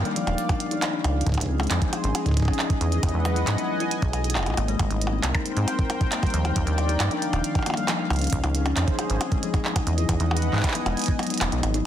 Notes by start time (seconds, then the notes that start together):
Already playing: D#3 A#4 D5 F5 G5
0.05 G3, closed hi-hat
0.16 F3, closed hi-hat
0.27 D#1 D#4, closed hi-hat, percussion blips
0.38 closed hi-hat
0.49 D4, kick, closed hi-hat, percussion blips
0.60 closed hi-hat
0.71 D#4, closed hi-hat
0.82 clap, closed hi-hat, percussion blips
0.93 D4
1.04 C#2, closed hi-hat, percussion blips
1.09 G#4
1.21 closed hi-hat
1.26 C#2 D#5, kick, closed hi-hat
1.29 kick
1.32 kick, closed hi-hat
1.35 kick
1.38 C#2, kick, percussion blips
1.40 kick, closed hi-hat
1.43 kick
1.46 C4, kick
1.50 C5
1.60 G#3, closed hi-hat, percussion blips
1.63 closed hi-hat
1.67 F2, clap, closed hi-hat
1.71 F3, closed hi-hat
1.82 D#4, kick, closed hi-hat
1.93 closed hi-hat, percussion blips
2.04 G#1 C#4, closed hi-hat
2.15 closed hi-hat, percussion blips
2.26 D#4, kick, closed hi-hat
2.29 kick
2.31 kick
2.34 kick
2.37 kick, closed hi-hat
2.40 kick
2.42 kick
2.45 kick
2.48 C#4, kick, percussion blips
2.53 closed hi-hat
2.59 E3, clap
2.70 kick, closed hi-hat
2.81 E2 B4, closed hi-hat
2.91 F#5, closed hi-hat
3.03 E2 B3, kick, closed hi-hat, percussion blips
3.09 closed hi-hat
3.14 E2 G#3
3.25 F#3, closed hi-hat, percussion blips
3.36 E4, closed hi-hat
3.47 G#2 G#5, clap, closed hi-hat
3.58 D#4, closed hi-hat
3.80 E4, closed hi-hat
3.91 closed hi-hat
4.02 B1 G#4, kick, closed hi-hat
4.13 closed hi-hat, percussion blips
4.24 closed hi-hat
4.30 closed hi-hat
4.35 E1, clap, percussion blips
4.39 percussion blips
4.43 closed hi-hat, percussion blips
4.46 B1, percussion blips
4.50 percussion blips
4.54 G#1, closed hi-hat, percussion blips
4.57 A#3, percussion blips
4.68 G#3, closed hi-hat
4.79 G#1 G3, kick, closed hi-hat, percussion blips
4.86 A#4
4.90 G#1 D#4, closed hi-hat
5.02 closed hi-hat
5.07 percussion blips
5.13 C4
5.17 C5
5.23 C2 G5, clap, closed hi-hat
5.35 D#4, kick, closed hi-hat, percussion blips
5.46 closed hi-hat
5.57 G#2 C4, closed hi-hat
5.68 closed hi-hat, percussion blips
5.79 kick, closed hi-hat
5.90 closed hi-hat, percussion blips
6.01 kick, closed hi-hat
6.12 D#3 A#3, clap, closed hi-hat
6.23 G3, kick, closed hi-hat, percussion blips
6.27 closed hi-hat
6.30 closed hi-hat
6.34 D#2 F3, closed hi-hat
6.38 D5
6.45 D#4, closed hi-hat, percussion blips
6.56 D#2, kick, closed hi-hat
6.67 D#2 D4, closed hi-hat
6.78 closed hi-hat, percussion blips
6.89 D#4, closed hi-hat
7.00 G2 F5, clap, closed hi-hat, percussion blips
7.11 D4, closed hi-hat
7.22 closed hi-hat
7.33 D#1, closed hi-hat, percussion blips
7.44 closed hi-hat
7.55 kick, closed hi-hat, percussion blips
7.59 percussion blips
7.63 closed hi-hat, percussion blips
7.66 A#3, percussion blips
7.70 percussion blips
7.74 G3, closed hi-hat, percussion blips
7.88 F3, clap, closed hi-hat, percussion blips
7.99 D#4
8.10 C#2 C#4, closed hi-hat, percussion blips
8.13 closed hi-hat
8.16 closed hi-hat
8.19 C#4, closed hi-hat
8.21 closed hi-hat
8.24 closed hi-hat
8.27 closed hi-hat
8.30 C#2, kick, closed hi-hat
8.33 closed hi-hat
8.38 D#5
8.44 C#2 D#4 G#4, closed hi-hat, percussion blips
8.55 C5, closed hi-hat
8.66 C#4, closed hi-hat, percussion blips
8.77 F2, clap, closed hi-hat
8.88 kick, closed hi-hat
8.99 closed hi-hat, percussion blips
9.10 G#1, closed hi-hat
9.21 C4, closed hi-hat, percussion blips
9.32 G#3, kick, closed hi-hat
9.43 F3, closed hi-hat
9.54 D#4, kick, closed hi-hat, percussion blips
9.65 E3, clap
9.76 D#4, kick, closed hi-hat, percussion blips
9.87 E2 B4, closed hi-hat
9.98 E4, closed hi-hat
10.06 E2 F#5, kick, closed hi-hat, percussion blips
10.20 E2 D#4, closed hi-hat
10.31 percussion blips
10.37 closed hi-hat
10.42 closed hi-hat
10.53 G#2 G#5, clap
10.57 clap
10.60 kick, clap
10.64 clap, closed hi-hat, percussion blips
10.68 clap
10.71 B3, clap, closed hi-hat
10.86 E1 G#3, closed hi-hat, percussion blips
10.97 B3, closed hi-hat
10.99 closed hi-hat
11.02 closed hi-hat
11.04 closed hi-hat
11.06 B3, kick, closed hi-hat
11.19 F#3, closed hi-hat, percussion blips
11.23 closed hi-hat
11.27 closed hi-hat
11.30 D#4, closed hi-hat
11.34 closed hi-hat
11.38 clap, closed hi-hat
11.41 E1, closed hi-hat, percussion blips
11.52 B1 D#4, closed hi-hat
11.63 G#1, closed hi-hat, percussion blips
11.74 D#4, closed hi-hat